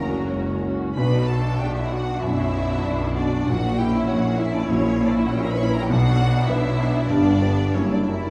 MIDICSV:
0, 0, Header, 1, 9, 480
1, 0, Start_track
1, 0, Key_signature, 2, "minor"
1, 0, Tempo, 650054
1, 704, Time_signature, 4, 2, 24, 8
1, 1179, Tempo, 626305
1, 2619, Tempo, 603015
1, 5499, Tempo, 665927
1, 6369, End_track
2, 0, Start_track
2, 0, Title_t, "Violin section"
2, 0, Program_c, 0, 48
2, 0, Note_on_c, 0, 82, 63
2, 464, Note_off_c, 0, 82, 0
2, 703, Note_on_c, 0, 83, 68
2, 926, Note_off_c, 0, 83, 0
2, 927, Note_on_c, 0, 81, 62
2, 1166, Note_on_c, 0, 79, 63
2, 1170, Note_off_c, 0, 81, 0
2, 1288, Note_on_c, 0, 76, 59
2, 1292, Note_off_c, 0, 79, 0
2, 1399, Note_on_c, 0, 78, 61
2, 1412, Note_off_c, 0, 76, 0
2, 1639, Note_on_c, 0, 76, 74
2, 1649, Note_off_c, 0, 78, 0
2, 2370, Note_on_c, 0, 74, 64
2, 2372, Note_off_c, 0, 76, 0
2, 2608, Note_off_c, 0, 74, 0
2, 2610, Note_on_c, 0, 78, 74
2, 2855, Note_off_c, 0, 78, 0
2, 2860, Note_on_c, 0, 79, 69
2, 2980, Note_off_c, 0, 79, 0
2, 2993, Note_on_c, 0, 76, 63
2, 3106, Note_off_c, 0, 76, 0
2, 3113, Note_on_c, 0, 78, 63
2, 3345, Note_on_c, 0, 76, 71
2, 3346, Note_off_c, 0, 78, 0
2, 3462, Note_off_c, 0, 76, 0
2, 3470, Note_on_c, 0, 74, 67
2, 3575, Note_on_c, 0, 73, 76
2, 3584, Note_off_c, 0, 74, 0
2, 3865, Note_off_c, 0, 73, 0
2, 3881, Note_on_c, 0, 74, 59
2, 3961, Note_on_c, 0, 76, 53
2, 3975, Note_off_c, 0, 74, 0
2, 4036, Note_on_c, 0, 78, 57
2, 4045, Note_off_c, 0, 76, 0
2, 4106, Note_on_c, 0, 79, 56
2, 4109, Note_off_c, 0, 78, 0
2, 4167, Note_off_c, 0, 79, 0
2, 4183, Note_on_c, 0, 82, 61
2, 4228, Note_off_c, 0, 82, 0
2, 4231, Note_on_c, 0, 83, 59
2, 4279, Note_off_c, 0, 83, 0
2, 4287, Note_on_c, 0, 85, 62
2, 4330, Note_on_c, 0, 83, 66
2, 4338, Note_off_c, 0, 85, 0
2, 4394, Note_off_c, 0, 83, 0
2, 4417, Note_on_c, 0, 82, 66
2, 4476, Note_off_c, 0, 82, 0
2, 4479, Note_on_c, 0, 79, 55
2, 4539, Note_on_c, 0, 78, 89
2, 4544, Note_off_c, 0, 79, 0
2, 4999, Note_on_c, 0, 76, 79
2, 5001, Note_off_c, 0, 78, 0
2, 5489, Note_on_c, 0, 74, 77
2, 5493, Note_off_c, 0, 76, 0
2, 5961, Note_off_c, 0, 74, 0
2, 5964, Note_on_c, 0, 73, 64
2, 6082, Note_on_c, 0, 74, 56
2, 6086, Note_off_c, 0, 73, 0
2, 6193, Note_on_c, 0, 76, 59
2, 6208, Note_off_c, 0, 74, 0
2, 6318, Note_on_c, 0, 74, 51
2, 6328, Note_off_c, 0, 76, 0
2, 6369, Note_off_c, 0, 74, 0
2, 6369, End_track
3, 0, Start_track
3, 0, Title_t, "Grand piano"
3, 0, Program_c, 1, 0
3, 0, Control_c, 1, 64, 127
3, 0, Note_on_c, 1, 42, 60
3, 0, Note_on_c, 1, 49, 42
3, 0, Note_on_c, 1, 66, 41
3, 0, Note_on_c, 1, 73, 46
3, 126, Note_off_c, 1, 49, 0
3, 219, Note_off_c, 1, 73, 0
3, 219, Note_on_c, 1, 73, 42
3, 362, Note_off_c, 1, 66, 0
3, 462, Note_on_c, 1, 66, 37
3, 608, Note_off_c, 1, 73, 0
3, 705, Note_off_c, 1, 66, 0
3, 718, Control_c, 1, 64, 0
3, 718, Note_on_c, 1, 35, 57
3, 719, Note_off_c, 1, 42, 0
3, 832, Control_c, 1, 64, 127
3, 953, Note_on_c, 1, 66, 40
3, 1181, Note_on_c, 1, 74, 45
3, 1328, Note_off_c, 1, 66, 0
3, 1432, Note_on_c, 1, 66, 41
3, 1565, Note_off_c, 1, 74, 0
3, 1638, Note_off_c, 1, 35, 0
3, 1656, Note_on_c, 1, 42, 42
3, 1810, Note_off_c, 1, 66, 0
3, 1909, Note_on_c, 1, 66, 45
3, 2043, Note_off_c, 1, 42, 0
3, 2126, Note_on_c, 1, 74, 42
3, 2291, Note_off_c, 1, 66, 0
3, 2367, Note_on_c, 1, 66, 43
3, 2517, Note_off_c, 1, 74, 0
3, 2611, Note_off_c, 1, 66, 0
3, 2620, Note_on_c, 1, 34, 61
3, 2634, Control_c, 1, 64, 0
3, 2740, Control_c, 1, 64, 127
3, 2864, Note_on_c, 1, 64, 43
3, 3097, Note_on_c, 1, 73, 49
3, 3245, Note_off_c, 1, 64, 0
3, 3351, Note_on_c, 1, 64, 49
3, 3482, Note_off_c, 1, 73, 0
3, 3551, Note_off_c, 1, 34, 0
3, 3585, Note_on_c, 1, 34, 56
3, 3729, Note_off_c, 1, 64, 0
3, 3835, Note_on_c, 1, 46, 49
3, 4076, Note_on_c, 1, 73, 51
3, 4212, Note_off_c, 1, 46, 0
3, 4324, Note_on_c, 1, 64, 51
3, 4451, Note_off_c, 1, 73, 0
3, 4511, Note_off_c, 1, 34, 0
3, 4549, Note_off_c, 1, 64, 0
3, 4550, Note_on_c, 1, 35, 72
3, 4552, Control_c, 1, 64, 0
3, 4671, Control_c, 1, 64, 127
3, 4782, Note_on_c, 1, 62, 46
3, 5024, Note_on_c, 1, 71, 56
3, 5159, Note_off_c, 1, 62, 0
3, 5265, Note_on_c, 1, 62, 49
3, 5406, Note_off_c, 1, 71, 0
3, 5476, Note_off_c, 1, 35, 0
3, 5487, Note_on_c, 1, 43, 63
3, 5504, Note_off_c, 1, 62, 0
3, 5511, Control_c, 1, 64, 0
3, 5632, Control_c, 1, 64, 127
3, 5729, Note_on_c, 1, 67, 45
3, 5733, Note_on_c, 1, 71, 44
3, 5942, Note_off_c, 1, 67, 0
3, 5944, Note_off_c, 1, 71, 0
3, 5946, Note_off_c, 1, 43, 0
3, 5967, Note_on_c, 1, 42, 52
3, 5981, Control_c, 1, 64, 0
3, 6090, Control_c, 1, 64, 127
3, 6209, Note_on_c, 1, 67, 34
3, 6215, Note_on_c, 1, 70, 36
3, 6369, Note_off_c, 1, 42, 0
3, 6369, Note_off_c, 1, 67, 0
3, 6369, Note_off_c, 1, 70, 0
3, 6369, End_track
4, 0, Start_track
4, 0, Title_t, "Violin section"
4, 0, Program_c, 2, 48
4, 0, Note_on_c, 2, 70, 52
4, 462, Note_off_c, 2, 70, 0
4, 718, Note_on_c, 2, 71, 51
4, 934, Note_off_c, 2, 71, 0
4, 951, Note_on_c, 2, 69, 53
4, 1182, Note_off_c, 2, 69, 0
4, 1199, Note_on_c, 2, 67, 50
4, 1309, Note_off_c, 2, 67, 0
4, 1319, Note_on_c, 2, 64, 51
4, 1430, Note_off_c, 2, 64, 0
4, 1432, Note_on_c, 2, 66, 51
4, 1666, Note_off_c, 2, 66, 0
4, 1676, Note_on_c, 2, 64, 62
4, 2376, Note_off_c, 2, 64, 0
4, 2398, Note_on_c, 2, 62, 52
4, 2627, Note_off_c, 2, 62, 0
4, 2631, Note_on_c, 2, 66, 59
4, 2861, Note_off_c, 2, 66, 0
4, 2878, Note_on_c, 2, 67, 57
4, 2989, Note_off_c, 2, 67, 0
4, 2996, Note_on_c, 2, 64, 56
4, 3107, Note_off_c, 2, 64, 0
4, 3111, Note_on_c, 2, 66, 54
4, 3337, Note_on_c, 2, 64, 60
4, 3345, Note_off_c, 2, 66, 0
4, 3458, Note_off_c, 2, 64, 0
4, 3466, Note_on_c, 2, 62, 58
4, 3578, Note_on_c, 2, 61, 59
4, 3582, Note_off_c, 2, 62, 0
4, 3860, Note_off_c, 2, 61, 0
4, 3875, Note_on_c, 2, 62, 58
4, 3970, Note_on_c, 2, 64, 45
4, 3972, Note_off_c, 2, 62, 0
4, 4047, Note_on_c, 2, 66, 50
4, 4048, Note_off_c, 2, 64, 0
4, 4114, Note_off_c, 2, 66, 0
4, 4130, Note_on_c, 2, 67, 47
4, 4179, Note_off_c, 2, 67, 0
4, 4186, Note_on_c, 2, 70, 49
4, 4229, Note_off_c, 2, 70, 0
4, 4239, Note_on_c, 2, 71, 53
4, 4283, Note_off_c, 2, 71, 0
4, 4289, Note_on_c, 2, 73, 54
4, 4339, Note_off_c, 2, 73, 0
4, 4351, Note_on_c, 2, 71, 52
4, 4402, Note_on_c, 2, 70, 52
4, 4405, Note_off_c, 2, 71, 0
4, 4468, Note_off_c, 2, 70, 0
4, 4476, Note_on_c, 2, 67, 51
4, 4538, Note_on_c, 2, 66, 67
4, 4542, Note_off_c, 2, 67, 0
4, 5006, Note_on_c, 2, 64, 64
4, 5010, Note_off_c, 2, 66, 0
4, 5485, Note_on_c, 2, 62, 69
4, 5496, Note_off_c, 2, 64, 0
4, 5959, Note_off_c, 2, 62, 0
4, 5971, Note_on_c, 2, 61, 55
4, 6090, Note_off_c, 2, 61, 0
4, 6099, Note_on_c, 2, 62, 44
4, 6217, Note_off_c, 2, 62, 0
4, 6220, Note_on_c, 2, 64, 45
4, 6341, Note_off_c, 2, 64, 0
4, 6369, End_track
5, 0, Start_track
5, 0, Title_t, "Viola section"
5, 0, Program_c, 3, 48
5, 0, Note_on_c, 3, 61, 40
5, 0, Note_on_c, 3, 66, 39
5, 458, Note_off_c, 3, 66, 0
5, 460, Note_off_c, 3, 61, 0
5, 483, Note_on_c, 3, 61, 35
5, 486, Note_on_c, 3, 66, 36
5, 711, Note_off_c, 3, 61, 0
5, 712, Note_off_c, 3, 66, 0
5, 723, Note_on_c, 3, 66, 39
5, 727, Note_on_c, 3, 62, 41
5, 948, Note_off_c, 3, 66, 0
5, 950, Note_off_c, 3, 62, 0
5, 959, Note_on_c, 3, 66, 44
5, 962, Note_on_c, 3, 62, 41
5, 1418, Note_off_c, 3, 66, 0
5, 1419, Note_off_c, 3, 62, 0
5, 1434, Note_on_c, 3, 66, 40
5, 1438, Note_on_c, 3, 62, 39
5, 1898, Note_off_c, 3, 66, 0
5, 1900, Note_off_c, 3, 62, 0
5, 1911, Note_on_c, 3, 66, 44
5, 1915, Note_on_c, 3, 62, 44
5, 2378, Note_off_c, 3, 62, 0
5, 2378, Note_off_c, 3, 66, 0
5, 2387, Note_on_c, 3, 62, 39
5, 2389, Note_on_c, 3, 66, 40
5, 2616, Note_off_c, 3, 62, 0
5, 2617, Note_off_c, 3, 66, 0
5, 2863, Note_on_c, 3, 61, 45
5, 2865, Note_on_c, 3, 64, 44
5, 3331, Note_off_c, 3, 61, 0
5, 3332, Note_off_c, 3, 64, 0
5, 3347, Note_on_c, 3, 64, 48
5, 3348, Note_on_c, 3, 61, 45
5, 3813, Note_off_c, 3, 64, 0
5, 3814, Note_off_c, 3, 61, 0
5, 3829, Note_on_c, 3, 61, 53
5, 3831, Note_on_c, 3, 64, 51
5, 4295, Note_off_c, 3, 61, 0
5, 4297, Note_off_c, 3, 64, 0
5, 4309, Note_on_c, 3, 64, 48
5, 4310, Note_on_c, 3, 61, 46
5, 4537, Note_off_c, 3, 61, 0
5, 4537, Note_off_c, 3, 64, 0
5, 4557, Note_on_c, 3, 59, 48
5, 4557, Note_on_c, 3, 62, 49
5, 4768, Note_off_c, 3, 62, 0
5, 4774, Note_off_c, 3, 59, 0
5, 4778, Note_on_c, 3, 62, 54
5, 4784, Note_on_c, 3, 59, 52
5, 5245, Note_off_c, 3, 62, 0
5, 5248, Note_off_c, 3, 59, 0
5, 5262, Note_on_c, 3, 62, 48
5, 5264, Note_on_c, 3, 59, 46
5, 5498, Note_off_c, 3, 62, 0
5, 5499, Note_off_c, 3, 59, 0
5, 5506, Note_on_c, 3, 62, 50
5, 5512, Note_on_c, 3, 59, 47
5, 5726, Note_off_c, 3, 62, 0
5, 5729, Note_off_c, 3, 59, 0
5, 5736, Note_on_c, 3, 62, 44
5, 5737, Note_on_c, 3, 59, 44
5, 5964, Note_off_c, 3, 62, 0
5, 5965, Note_off_c, 3, 59, 0
5, 5971, Note_on_c, 3, 64, 37
5, 5972, Note_on_c, 3, 58, 36
5, 6209, Note_off_c, 3, 64, 0
5, 6210, Note_off_c, 3, 58, 0
5, 6224, Note_on_c, 3, 64, 34
5, 6225, Note_on_c, 3, 58, 32
5, 6369, Note_off_c, 3, 58, 0
5, 6369, Note_off_c, 3, 64, 0
5, 6369, End_track
6, 0, Start_track
6, 0, Title_t, "French horn section"
6, 0, Program_c, 4, 60
6, 697, Note_on_c, 4, 54, 43
6, 702, Note_on_c, 4, 62, 44
6, 866, Note_off_c, 4, 54, 0
6, 870, Note_off_c, 4, 62, 0
6, 1679, Note_on_c, 4, 54, 50
6, 1682, Note_on_c, 4, 62, 50
6, 1840, Note_off_c, 4, 54, 0
6, 1842, Note_off_c, 4, 62, 0
6, 2620, Note_on_c, 4, 54, 46
6, 2627, Note_on_c, 4, 64, 42
6, 2788, Note_off_c, 4, 54, 0
6, 2792, Note_off_c, 4, 64, 0
6, 3576, Note_on_c, 4, 64, 57
6, 3579, Note_on_c, 4, 54, 56
6, 3744, Note_off_c, 4, 64, 0
6, 3746, Note_off_c, 4, 54, 0
6, 4545, Note_on_c, 4, 62, 56
6, 4546, Note_on_c, 4, 54, 52
6, 4706, Note_off_c, 4, 62, 0
6, 4707, Note_off_c, 4, 54, 0
6, 5513, Note_on_c, 4, 55, 57
6, 5516, Note_on_c, 4, 59, 54
6, 5667, Note_off_c, 4, 55, 0
6, 5669, Note_off_c, 4, 59, 0
6, 5980, Note_on_c, 4, 58, 46
6, 5981, Note_on_c, 4, 55, 41
6, 6146, Note_off_c, 4, 58, 0
6, 6147, Note_off_c, 4, 55, 0
6, 6369, End_track
7, 0, Start_track
7, 0, Title_t, "Cello section"
7, 0, Program_c, 5, 48
7, 0, Note_on_c, 5, 38, 51
7, 222, Note_off_c, 5, 38, 0
7, 224, Note_on_c, 5, 37, 44
7, 707, Note_off_c, 5, 37, 0
7, 709, Note_on_c, 5, 47, 55
7, 1125, Note_off_c, 5, 47, 0
7, 1190, Note_on_c, 5, 47, 49
7, 1609, Note_off_c, 5, 47, 0
7, 1669, Note_on_c, 5, 47, 51
7, 2089, Note_off_c, 5, 47, 0
7, 2150, Note_on_c, 5, 47, 50
7, 2567, Note_off_c, 5, 47, 0
7, 2622, Note_on_c, 5, 46, 56
7, 3044, Note_off_c, 5, 46, 0
7, 3103, Note_on_c, 5, 46, 55
7, 3524, Note_off_c, 5, 46, 0
7, 3574, Note_on_c, 5, 46, 64
7, 4000, Note_off_c, 5, 46, 0
7, 4052, Note_on_c, 5, 46, 66
7, 4477, Note_off_c, 5, 46, 0
7, 4534, Note_on_c, 5, 47, 67
7, 4952, Note_off_c, 5, 47, 0
7, 5017, Note_on_c, 5, 47, 60
7, 5443, Note_off_c, 5, 47, 0
7, 5503, Note_on_c, 5, 43, 61
7, 5910, Note_off_c, 5, 43, 0
7, 5976, Note_on_c, 5, 42, 45
7, 6369, Note_off_c, 5, 42, 0
7, 6369, End_track
8, 0, Start_track
8, 0, Title_t, "Double bass section"
8, 0, Program_c, 6, 48
8, 0, Note_on_c, 6, 30, 50
8, 167, Note_off_c, 6, 30, 0
8, 223, Note_on_c, 6, 30, 51
8, 650, Note_off_c, 6, 30, 0
8, 705, Note_on_c, 6, 35, 53
8, 1123, Note_off_c, 6, 35, 0
8, 1182, Note_on_c, 6, 35, 50
8, 1605, Note_off_c, 6, 35, 0
8, 1668, Note_on_c, 6, 35, 50
8, 2088, Note_off_c, 6, 35, 0
8, 2154, Note_on_c, 6, 35, 55
8, 2569, Note_off_c, 6, 35, 0
8, 2628, Note_on_c, 6, 34, 55
8, 3047, Note_off_c, 6, 34, 0
8, 3109, Note_on_c, 6, 34, 57
8, 3527, Note_off_c, 6, 34, 0
8, 3587, Note_on_c, 6, 34, 58
8, 4007, Note_off_c, 6, 34, 0
8, 4064, Note_on_c, 6, 34, 67
8, 4483, Note_off_c, 6, 34, 0
8, 4545, Note_on_c, 6, 35, 65
8, 4957, Note_off_c, 6, 35, 0
8, 5026, Note_on_c, 6, 35, 62
8, 5448, Note_off_c, 6, 35, 0
8, 5503, Note_on_c, 6, 31, 60
8, 5910, Note_off_c, 6, 31, 0
8, 5971, Note_on_c, 6, 30, 49
8, 6369, Note_off_c, 6, 30, 0
8, 6369, End_track
9, 0, Start_track
9, 0, Title_t, "Tuba"
9, 0, Program_c, 7, 58
9, 0, Note_on_c, 7, 30, 49
9, 166, Note_off_c, 7, 30, 0
9, 216, Note_on_c, 7, 30, 51
9, 646, Note_off_c, 7, 30, 0
9, 704, Note_on_c, 7, 35, 57
9, 1123, Note_off_c, 7, 35, 0
9, 1186, Note_on_c, 7, 35, 50
9, 1607, Note_off_c, 7, 35, 0
9, 1672, Note_on_c, 7, 35, 46
9, 2091, Note_off_c, 7, 35, 0
9, 2148, Note_on_c, 7, 35, 55
9, 2566, Note_off_c, 7, 35, 0
9, 2617, Note_on_c, 7, 34, 60
9, 3042, Note_off_c, 7, 34, 0
9, 3102, Note_on_c, 7, 34, 58
9, 3524, Note_off_c, 7, 34, 0
9, 3579, Note_on_c, 7, 34, 57
9, 3931, Note_off_c, 7, 34, 0
9, 4058, Note_on_c, 7, 34, 66
9, 4480, Note_off_c, 7, 34, 0
9, 4534, Note_on_c, 7, 35, 68
9, 4952, Note_off_c, 7, 35, 0
9, 5007, Note_on_c, 7, 35, 68
9, 5438, Note_off_c, 7, 35, 0
9, 5494, Note_on_c, 7, 31, 54
9, 5906, Note_off_c, 7, 31, 0
9, 5960, Note_on_c, 7, 30, 52
9, 6369, Note_off_c, 7, 30, 0
9, 6369, End_track
0, 0, End_of_file